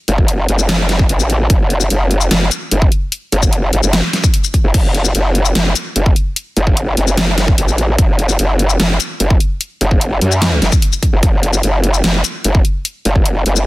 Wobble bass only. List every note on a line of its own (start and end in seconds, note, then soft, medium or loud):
0.08 0.47 F#1 loud
0.48 1.08 F#1 medium
1.09 1.48 A1 loud
1.50 1.89 F#1 loud
1.90 2.29 F#1 loud
2.31 2.50 F#1 medium
2.71 2.90 F#1 loud
3.32 3.71 F#1 loud
3.73 3.81 G1 loud
3.83 4.02 F#1 loud
4.64 4.73 F#1 medium
4.74 5.13 F#1 loud
5.15 5.54 F#1 loud
5.55 5.74 F#1 loud
5.96 6.14 F#1 loud
6.57 6.96 F#1 loud
6.97 7.56 F#1 medium
7.58 7.97 A1 loud
7.98 8.37 F#1 loud
8.39 8.78 F#1 loud
8.80 8.98 F#1 loud
9.20 9.39 F#1 loud
9.81 10.20 F#1 loud
10.21 10.60 F#2 medium
10.62 10.71 F#1 medium
11.13 11.21 F#1 medium
11.23 11.62 F#1 loud
11.63 12.02 F#1 loud
12.04 12.23 F#1 loud
12.44 12.63 F#1 loud
13.05 13.44 F#1 loud
13.46 13.66 F#1 loud